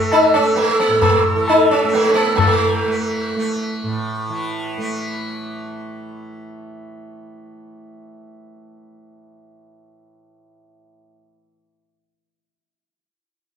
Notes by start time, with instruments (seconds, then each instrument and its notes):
Already playing: tanpura A2 E3 A3
0.02 sitar A4
0.12 sitar D#4, tabla na
0.22 sitar A4
0.34 tanpura A3, sitar C#4, tabla na
0.44 sitar A4
0.56 sitar A3, tabla te
0.68 sitar A4
0.79 sitar A#3, tabla na
0.88 tanpura A2, sitar A4
1.01 sitar A3, tabla na, tabla ge
1.14 sitar A4
1.36 tanpura E3, sitar A4
1.48 sitar D#4, tabla na
1.58 sitar A4
1.71 sitar C#4, tabla na
1.81 tanpura A3, sitar A4
1.94 sitar A3, tabla te
2.09 sitar C#4
2.14 sitar A#3, tabla na
2.24 sitar A4
2.35 tanpura E3, sitar A3, tabla na, tabla ge
2.40 sitar G#3
2.47 sitar A3
2.87 tanpura A3
3.36 tanpura A3
3.83 tanpura A2
4.30 tanpura E3
4.78 tanpura A3